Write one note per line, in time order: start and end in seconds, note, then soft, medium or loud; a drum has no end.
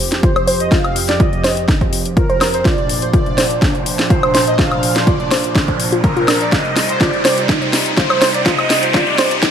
0.00 2.61 F2 medium
0.00 2.61 F3 medium
0.00 2.61 C4 medium
0.00 2.61 G4 medium
0.00 riser medium
0.12 snare soft
0.12 closed hi-hat medium
0.23 0.30 F4 medium
0.23 0.61 C5 loud
0.23 kick loud
0.23 closed hi-hat medium
0.36 0.42 C5 loud
0.36 closed hi-hat soft
0.36 high woodblock medium
0.47 0.52 C5 loud
0.47 open hi-hat medium
0.60 0.72 D#5 loud
0.60 closed hi-hat medium
0.72 0.78 F4 loud
0.72 1.10 F5 loud
0.72 kick loud
0.72 snare medium
0.72 closed hi-hat soft
0.84 closed hi-hat soft
0.84 high woodblock medium
0.96 open hi-hat loud
1.08 1.20 D5 medium
1.08 snare soft
1.08 closed hi-hat medium
1.20 1.27 F4 medium
1.20 1.65 D#5 medium
1.20 kick loud
1.20 closed hi-hat medium
1.33 closed hi-hat soft
1.44 1.48 C5 loud
1.44 snare medium
1.44 open hi-hat medium
1.57 closed hi-hat soft
1.68 1.75 D#4 medium
1.68 kick loud
1.68 snare medium
1.68 closed hi-hat medium
1.81 kick medium
1.81 closed hi-hat soft
1.93 open hi-hat loud
2.06 closed hi-hat medium
2.17 2.24 F4 medium
2.17 2.55 A#4 loud
2.17 kick loud
2.17 closed hi-hat soft
2.30 2.36 C5 loud
2.30 closed hi-hat soft
2.41 2.45 C5 loud
2.41 snare medium
2.41 open hi-hat medium
2.41 high woodblock medium
2.54 2.66 C5 medium
2.54 closed hi-hat medium
2.65 6.49 A#2 medium
2.65 6.49 F3 medium
2.65 6.49 D4 medium
2.65 2.72 F4 loud
2.65 6.49 C5 medium
2.65 3.03 D5 loud
2.65 kick loud
2.65 snare medium
2.65 closed hi-hat medium
2.78 closed hi-hat soft
2.89 open hi-hat loud
3.02 3.07 C5 medium
3.02 closed hi-hat soft
3.14 3.20 F4 medium
3.14 3.59 D5 loud
3.14 kick loud
3.14 closed hi-hat medium
3.26 closed hi-hat soft
3.38 3.42 C5 loud
3.38 snare medium
3.38 open hi-hat medium
3.51 closed hi-hat soft
3.62 3.69 D4 medium
3.62 kick loud
3.62 snare medium
3.62 closed hi-hat soft
3.75 closed hi-hat soft
3.86 open hi-hat loud
3.99 snare medium
3.99 closed hi-hat soft
4.10 4.17 F4 medium
4.10 4.45 C5 medium
4.10 kick loud
4.10 closed hi-hat soft
4.23 4.29 C5 loud
4.23 closed hi-hat soft
4.23 high woodblock medium
4.34 4.39 C5 loud
4.34 snare medium
4.34 open hi-hat medium
4.47 4.59 D#5 loud
4.47 closed hi-hat soft
4.59 4.66 F4 loud
4.59 4.97 F5 loud
4.59 kick loud
4.59 snare medium
4.59 closed hi-hat soft
4.72 closed hi-hat soft
4.72 high woodblock medium
4.83 open hi-hat loud
4.96 5.06 C5 medium
4.96 snare medium
4.96 closed hi-hat medium
5.07 5.14 F4 medium
5.07 5.52 D5 medium
5.07 kick loud
5.07 closed hi-hat soft
5.20 closed hi-hat soft
5.31 5.35 C5 loud
5.31 snare medium
5.31 open hi-hat medium
5.44 closed hi-hat soft
5.55 5.62 D4 medium
5.55 kick loud
5.55 snare medium
5.55 closed hi-hat soft
5.68 kick medium
5.68 closed hi-hat soft
5.80 open hi-hat loud
5.92 5.99 F4 medium
5.92 closed hi-hat soft
6.04 6.42 A#4 medium
6.04 6.11 A#4 medium
6.04 kick loud
6.04 closed hi-hat soft
6.17 6.23 F4 loud
6.17 closed hi-hat soft
6.28 6.35 D4 medium
6.28 snare medium
6.28 open hi-hat loud
6.28 high woodblock medium
6.41 6.53 D5 loud
6.41 closed hi-hat soft
6.52 9.51 C3 medium
6.52 9.51 G3 medium
6.52 9.51 D#4 medium
6.52 6.59 F4 loud
6.52 9.51 C5 medium
6.52 6.90 D#5 loud
6.52 kick loud
6.52 snare medium
6.52 closed hi-hat medium
6.65 closed hi-hat soft
6.76 snare medium
6.76 open hi-hat loud
6.89 7.01 C5 medium
6.89 closed hi-hat medium
7.01 7.08 F4 medium
7.01 7.46 D5 loud
7.01 kick loud
7.01 snare medium
7.01 closed hi-hat medium
7.13 closed hi-hat soft
7.25 7.29 C5 loud
7.25 snare medium
7.25 open hi-hat medium
7.38 closed hi-hat soft
7.49 7.56 D#4 medium
7.49 kick loud
7.49 snare medium
7.49 closed hi-hat medium
7.62 closed hi-hat soft
7.73 snare medium
7.73 open hi-hat loud
7.86 closed hi-hat soft
7.97 8.04 F4 medium
7.97 8.36 C5 loud
7.97 kick loud
7.97 snare medium
7.97 closed hi-hat soft
8.10 8.16 C5 loud
8.10 closed hi-hat soft
8.10 high woodblock medium
8.22 8.26 C5 loud
8.22 snare medium
8.22 open hi-hat loud
8.34 8.40 D5 loud
8.34 closed hi-hat soft
8.46 8.53 F4 loud
8.46 8.84 D#5 loud
8.46 kick loud
8.46 snare medium
8.46 closed hi-hat medium
8.59 closed hi-hat soft
8.59 high woodblock medium
8.70 snare medium
8.70 open hi-hat loud
8.83 8.95 C5 medium
8.83 closed hi-hat medium
8.94 9.01 F4 medium
8.94 9.39 D5 loud
8.94 kick loud
8.94 snare medium
8.94 closed hi-hat medium
9.07 closed hi-hat soft
9.18 9.22 C5 loud
9.18 snare medium
9.18 open hi-hat medium
9.31 closed hi-hat medium
9.43 9.49 D#4 medium
9.43 kick loud
9.43 snare medium
9.43 closed hi-hat medium